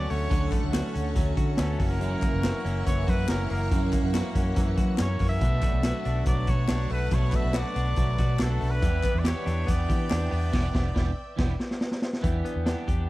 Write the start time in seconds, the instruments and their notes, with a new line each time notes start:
Already playing: clean electric guitar D3 F#3 C#4 F#4, string machine A4 C#5 F#5 C#6, trumpet D5
0.09 fingered electric bass D2, clean electric guitar A3 C#4 F#4, trumpet C#5, open hi-hat
0.29 fingered electric bass D2, clean electric guitar D3 F#3 A3 C#4 F#4, kick, closed hi-hat
0.52 clean electric guitar A3, kick, clap, closed hi-hat
0.64 fingered electric bass D2
0.71 clean electric guitar F#3 A3 C#4 F#4, snare, clap, closed hi-hat
0.94 fingered electric bass D2, clean electric guitar A3 C#4 F#4, closed hi-hat
1.14 fingered electric bass D2, clean electric guitar F#3 A3 C#4 F#4, kick, closed hi-hat
1.37 fingered electric bass D3, clean electric guitar F#4, kick, closed hi-hat
1.57 fingered electric bass D2, clean electric guitar F#3 A3 C#4 F#4, trumpet A4, snare, clap, closed hi-hat
1.79 fingered electric bass F#1, clean electric guitar F#2 E3 A#3 C#4 F#4, string machine A#4 E5 F#5 C#6, kick, open hi-hat
1.89 trumpet A#4
2.01 clean electric guitar F#2 C#3 E3 A#3 C#4 F#4, closed hi-hat
2.21 clean electric guitar A#3, kick, clap, closed hi-hat
2.34 fingered electric bass F#1
2.43 clean electric guitar E3 A#3 C#4 F#4, snare, clap, closed hi-hat
2.65 fingered electric bass F#1, clean electric guitar E3 A#3 C#4 F#4, closed hi-hat
2.86 fingered electric bass F#1, clean electric guitar E3 A#3 C#4 F#4, trumpet C#5, kick, closed hi-hat
3.07 fingered electric bass F#2, clean electric guitar F#4, trumpet B4, kick, closed hi-hat
3.28 fingered electric bass F#1, clean electric guitar E3 A#3 C#4 F#4, trumpet A#4, snare, clap, closed hi-hat
3.50 fingered electric bass F#1, clean electric guitar E3 A#3 C#4 F#4, trumpet A#4, open hi-hat
3.71 clean electric guitar F#2 C#3 E3 A#3 C#4 F#4, fingered electric bass F#2, kick, closed hi-hat
3.92 clean electric guitar A#3, kick, clap, closed hi-hat
4.03 fingered electric bass F#2
4.14 clean electric guitar E3 A#3 C#4 F#4, snare, clap, closed hi-hat
4.34 fingered electric bass F#2, clean electric guitar E3 A#3 C#4 F#4, kick, closed hi-hat
4.56 fingered electric bass F#2, clean electric guitar E3 A#3 C#4 F#4, kick, closed hi-hat
4.77 fingered electric bass F#3, clean electric guitar F#4, kick, closed hi-hat
4.98 fingered electric bass F#2, clean electric guitar E3 A#3 C#4 F#4, trumpet C#5, snare, clap, closed hi-hat
5.19 fingered electric bass F#2, clean electric guitar E3 A#3 C#4 F#4, kick, open hi-hat
5.29 trumpet E5
5.41 fingered electric bass B1, clean electric guitar B2 F#3 A3 D4 F#4, string machine B4 F#5 A5, kick, closed hi-hat
5.62 clean electric guitar A3, kick, clap, closed hi-hat
5.73 fingered electric bass B1
5.83 clean electric guitar F#3 A3 D4 F#4, snare, clap, closed hi-hat
6.04 fingered electric bass B1, clean electric guitar A3 D4 F#4, closed hi-hat
6.25 fingered electric bass B1, clean electric guitar F#3 A3 D4 F#4, trumpet D5, kick, closed hi-hat
6.47 fingered electric bass B2, clean electric guitar F#4, trumpet C#5, kick, closed hi-hat
6.68 fingered electric bass B1, clean electric guitar F#3 A3 D4 F#4, snare, clap, closed hi-hat
6.89 fingered electric bass B1, clean electric guitar A3 D4 F#4, trumpet B4, open hi-hat
7.11 fingered electric bass B1, clean electric guitar B2 F#3 A3 D4 F#4, trumpet C#5, kick, closed hi-hat
7.32 clean electric guitar A3, trumpet E5, kick, clap, closed hi-hat
7.45 fingered electric bass B1
7.53 clean electric guitar F#3 A3 D4 F#4, snare, clap, closed hi-hat
7.59 trumpet D5
7.76 fingered electric bass B1, clean electric guitar A3 D4 F#4, closed hi-hat
7.96 fingered electric bass B1, clean electric guitar F#3 A3 D4 F#4, kick, closed hi-hat
8.18 fingered electric bass B2, clean electric guitar F#4, kick, snare, closed hi-hat
8.39 fingered electric bass B1, clean electric guitar F#3 A3 D4 F#4, trumpet A4, snare, clap, closed hi-hat
8.60 fingered electric bass B1, clean electric guitar A3 D4 F#4, open hi-hat
8.70 trumpet B4
8.82 fingered electric bass E2, clean electric guitar E3 B3 D4 G4, string machine E5 G5, kick, closed hi-hat
9.03 clean electric guitar B3, kick, clap, closed hi-hat
9.14 fingered electric bass E2
9.19 trumpet D5
9.24 clean electric guitar E3 B3 D4 G4, trumpet C#5, snare, clap, closed hi-hat
9.46 fingered electric bass E2, clean electric guitar B3 D4 G4, closed hi-hat
9.67 fingered electric bass E2, clean electric guitar E3 B3 D4 G4, trumpet D5, kick, closed hi-hat
9.89 fingered electric bass E3, clean electric guitar G4, kick, snare, closed hi-hat
10.09 fingered electric bass E2, clean electric guitar E3 B3 D4 G4, snare, clap, closed hi-hat
10.31 fingered electric bass E2, clean electric guitar B3 D4 G4, open hi-hat
10.52 fingered electric bass E1, clean electric guitar E3 B3 D4 G4, kick, snare, crash
10.72 fingered electric bass E1, clean electric guitar E3 B3 D4 G4, kick, snare
10.94 fingered electric bass E1, clean electric guitar E3 B3 D4 G4, kick, snare
11.36 fingered electric bass E1, clean electric guitar E3 B3 D4 G4, kick, snare, crash
11.60 snare
11.71 snare
11.81 snare
11.91 snare
12.02 snare
12.13 snare
12.21 fingered electric bass E2, clean electric guitar E3 B3 D4 G4, kick, closed hi-hat
12.45 clean electric guitar B3, closed hi-hat
12.56 fingered electric bass E2
12.65 clean electric guitar E3 B3 D4 G4, snare, closed hi-hat
12.87 fingered electric bass E2, clean electric guitar B3 D4 G4, kick, closed hi-hat